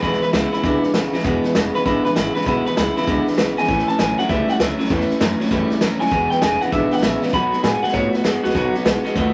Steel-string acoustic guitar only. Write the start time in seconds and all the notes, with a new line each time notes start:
0.03 E2 B2 E3 G#3 B3 E4
0.22 E3 G#3 B3 E4
0.33 E3 G#3 B3 E4
0.53 E3 G#3 B3 E4
0.64 E2 B2 E3 G#3 B3 E4
0.83 E3 G#3 B3 E4
0.94 E3 G#3 B3 E4
1.13 E3 G#3 B3 E4
1.25 E2 B2 E3 G#3 B3 E4
1.44 E3 G#3 B3 E4
1.55 E3 G#3 B3 E4
1.74 E3 G#3 B3 E4
1.86 E2 B2 E3 G#3 B3 E4
2.05 E3 G#3 B3 E4
2.16 E3 G#3 B3 E4
2.35 E3 G#3 B3 E4
2.46 E2 B2 E3 G#3 B3 E4
2.65 E3 G#3 B3 E4
2.76 E3 G#3 B3 E4
2.96 E3 G#3 B3 E4
3.07 E2 B2 E3 G#3 B3 E4
3.26 E3 G#3 B3 E4
3.37 E3 G#3 B3 E4
3.57 E3 G#3 B3 E4
3.69 A2 E3 A3 C#4 E4
3.87 A3 C#4 E4
3.99 E3 A3 C#4 E4
4.18 A3 C#4 E4
4.29 A2 E3 A3 C#4 E4
4.48 A3 C#4 E4
4.59 E3 A3 C#4 E4
4.79 A3 C#4 E4
4.90 A2 E3 A3 C#4 E4
5.09 A3 C#4 E4
5.20 E3 A3 C#4 E4
5.40 A3 C#4 E4
5.51 A2 E3 A3 C#4 E4
5.70 A3 C#4 E4
5.81 E3 A3 C#4 E4
6.00 A3 C#4 E4
6.11 E2 B2 E3 G#3 B3 E4
6.31 E3 G#3 B3 E4
6.42 E3 G#3 B3 E4
6.62 E3 G#3 B3 E4
6.72 E2 B2 E3 G#3 B3 E4
6.91 E3 G#3 B3 E4
7.02 E3 G#3 B3 E4
7.22 E3 G#3 B3 E4
7.33 B2 F#3 B3 D#4 F#4
7.52 B3 D#4 F#4
7.63 F#3 B3 D#4 F#4
7.83 B3 D#4 F#4
7.94 B2 F#3 B3 D#4 F#4
8.13 B3 D#4 F#4
8.24 F#3 B3 D#4 F#4
8.44 B3 D#4 F#4
8.55 B2 F#3 B3 D#4 F#4
8.74 B3 D#4 F#4
8.85 F#3 B3 D#4 F#4
9.05 B3 D#4 F#4
9.16 B2 F#3 B3 D#4 F#4